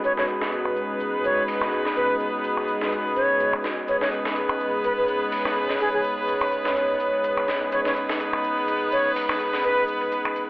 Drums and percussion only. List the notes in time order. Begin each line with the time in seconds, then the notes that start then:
0.04 closed hi-hat, shaker
0.17 snare
0.28 shaker
0.41 snare, closed hi-hat
0.52 closed hi-hat, shaker
0.65 finger snap
0.76 shaker
0.89 closed hi-hat
1.00 closed hi-hat, shaker
1.24 shaker
1.37 closed hi-hat
1.48 closed hi-hat, open hi-hat
1.61 finger snap, snare
1.72 shaker
1.85 snare, closed hi-hat
1.96 closed hi-hat, shaker
2.20 shaker
2.33 closed hi-hat
2.44 closed hi-hat, shaker
2.57 finger snap
2.68 shaker
2.81 snare, closed hi-hat
2.92 closed hi-hat, shaker
3.05 closed hi-hat
3.16 shaker
3.29 closed hi-hat
3.40 closed hi-hat, shaker
3.53 finger snap
3.64 snare, shaker
3.77 closed hi-hat
3.88 closed hi-hat, shaker
4.01 snare
4.12 shaker
4.25 snare
4.36 closed hi-hat, shaker
4.49 finger snap
4.60 shaker
4.73 closed hi-hat
4.84 closed hi-hat, shaker
5.08 shaker
5.21 closed hi-hat
5.32 closed hi-hat, open hi-hat
5.45 finger snap, snare
5.56 shaker
5.69 snare, closed hi-hat
5.80 closed hi-hat, shaker
6.04 shaker
6.17 closed hi-hat
6.28 closed hi-hat, shaker
6.41 finger snap
6.52 shaker
6.65 snare, closed hi-hat
6.76 closed hi-hat, shaker
7.00 shaker
7.13 closed hi-hat
7.24 closed hi-hat, shaker
7.37 finger snap
7.48 snare, shaker
7.61 closed hi-hat
7.72 closed hi-hat, shaker
7.85 snare
7.96 shaker
8.09 snare, closed hi-hat
8.20 closed hi-hat, shaker
8.33 finger snap
8.44 shaker
8.57 closed hi-hat
8.68 closed hi-hat, shaker
8.92 shaker
9.05 closed hi-hat
9.16 closed hi-hat, open hi-hat
9.29 finger snap, snare
9.40 shaker
9.53 snare, closed hi-hat
9.64 closed hi-hat, shaker
9.88 shaker
10.01 closed hi-hat
10.12 closed hi-hat, shaker
10.25 finger snap
10.36 shaker